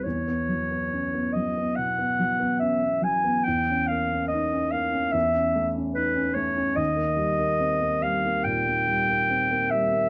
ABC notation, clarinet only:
X:1
M:4/4
L:1/8
Q:1/4=72
K:Em
V:1 name="Clarinet"
_d3 _e f2 =e _a | g =f _e f =e z B ^c | _e3 =f g3 =e |]